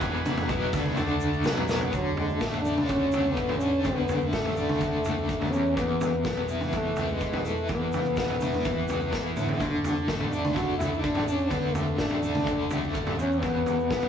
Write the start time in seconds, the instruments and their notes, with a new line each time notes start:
Already playing: tonewheel organ E3 G#3 B3 G#4 B4
0.01 picked electric bass E1, overdriven electric guitar E2 B2 E3, kick, floor tom, shaker
0.25 mid tom, shaker
0.38 floor tom, shaker
0.49 picked electric bass B1, overdriven electric guitar B2 F#3 B3, kick, shaker
0.73 picked electric bass D2, overdriven electric guitar D3 A3 D4, kick, floor tom, mid tom, shaker
0.85 mid tom, shaker
0.96 picked electric bass D2, overdriven electric guitar D3 A3 D4, tonewheel organ A3 D4 A4, floor tom, shaker
1.20 shaker
1.33 shaker
1.44 picked electric bass B1, overdriven electric guitar B2 F#3 B3, tonewheel organ B3 F#4 B4, snare, mid tom, shaker
1.58 floor tom
1.68 snare, shaker
1.81 floor tom, shaker
1.92 picked electric bass D2, overdriven electric guitar D3, trombone F#3, kick, floor tom, shaker
2.16 trombone G#3, floor tom
2.29 shaker
2.38 picked electric bass A1, trombone A3, overdriven electric guitar A3, kick, snare, shaker
2.54 floor tom
2.61 trombone D4, shaker
2.66 overdriven electric guitar D4
2.76 picked electric bass D2, mid tom, shaker
2.86 trombone C#4, kick, shaker
2.90 overdriven electric guitar D3, floor tom
3.12 picked electric bass C#2, overdriven electric guitar A3, floor tom, shaker
3.24 shaker
3.34 overdriven electric guitar D3, trombone B3, kick, shaker
3.49 picked electric bass A1, floor tom
3.57 trombone C#4, overdriven electric guitar D4, shaker
3.73 shaker
3.81 overdriven electric guitar D3, trombone B3, kick, floor tom, shaker
3.85 picked electric bass D2
4.08 floor tom, shaker
4.21 shaker
4.29 picked electric bass A1, trombone A3, kick, shaker
4.33 overdriven electric guitar A3, snare
4.45 floor tom
4.56 overdriven electric guitar D4, shaker
4.69 picked electric bass D2, mid tom, shaker
4.81 overdriven electric guitar D3, kick, floor tom, shaker
5.04 picked electric bass C#2, overdriven electric guitar A3, floor tom, shaker
5.17 shaker
5.29 overdriven electric guitar D3, kick, shaker
5.41 picked electric bass D2, floor tom
5.51 overdriven electric guitar E2, picked electric bass E2, trombone C#4, shaker
5.66 shaker
5.76 overdriven electric guitar E2, trombone B3, kick, floor tom, shaker
6.01 floor tom, shaker
6.13 shaker
6.25 picked electric bass B1, overdriven electric guitar B3, kick, snare, shaker
6.37 floor tom
6.48 overdriven electric guitar E4, shaker
6.61 picked electric bass E2, mid tom, shaker
6.72 overdriven electric guitar E3, trombone A3, kick, floor tom, shaker
6.96 picked electric bass C#2, overdriven electric guitar B3, floor tom, shaker
7.09 trombone G#3, shaker
7.21 overdriven electric guitar E3, kick, shaker
7.32 picked electric bass B1, floor tom
7.44 trombone A3, overdriven electric guitar E4, shaker
7.57 shaker
7.69 overdriven electric guitar E2, picked electric bass E2, trombone B3, kick, floor tom, shaker
7.92 floor tom, mid tom, shaker
8.05 shaker
8.16 picked electric bass B1, overdriven electric guitar B3, kick, snare, shaker
8.30 floor tom
8.40 overdriven electric guitar E4, mid tom, shaker
8.53 picked electric bass E2, mid tom, shaker
8.65 overdriven electric guitar E3, kick, floor tom, shaker
8.88 picked electric bass C#2, overdriven electric guitar B3, floor tom, shaker
9.00 shaker
9.12 picked electric bass E2, overdriven electric guitar E3, kick, snare, shaker
9.36 picked electric bass D2, overdriven electric guitar E4, mid tom, shaker
9.49 floor tom
9.60 picked electric bass D2, overdriven electric guitar D3, kick, floor tom, shaker
9.84 floor tom, shaker
9.97 shaker
10.08 picked electric bass A1, overdriven electric guitar A3, kick, snare, shaker
10.20 floor tom
10.31 trombone D4, overdriven electric guitar D4, shaker
10.45 picked electric bass D2, mid tom, shaker
10.55 overdriven electric guitar D3, trombone F#4, kick, floor tom, shaker
10.79 picked electric bass C#2, overdriven electric guitar A3, trombone E4, floor tom, shaker
10.93 shaker
11.02 overdriven electric guitar D3, trombone D4, kick, shaker
11.15 picked electric bass A1, floor tom
11.26 trombone C#4, overdriven electric guitar D4, shaker
11.40 shaker
11.50 picked electric bass D2, overdriven electric guitar D3, trombone B3, kick, floor tom, shaker
11.74 trombone A3, floor tom, shaker
11.87 shaker
11.98 picked electric bass A1, overdriven electric guitar A3, trombone D4, kick, snare, shaker
12.11 floor tom
12.23 overdriven electric guitar D4, shaker
12.35 picked electric bass D2, mid tom, shaker
12.47 overdriven electric guitar D3, kick, floor tom, shaker
12.70 picked electric bass C#2, overdriven electric guitar A3, floor tom, shaker
12.83 shaker
12.94 overdriven electric guitar D3, kick, shaker
13.07 picked electric bass A1, floor tom
13.18 overdriven electric guitar E2, picked electric bass E2, trombone C#4, shaker
13.31 shaker
13.40 overdriven electric guitar E2, trombone B3, kick, floor tom, shaker
13.66 floor tom, shaker
13.79 shaker
13.90 picked electric bass B1, overdriven electric guitar B3, kick, snare, shaker
14.03 floor tom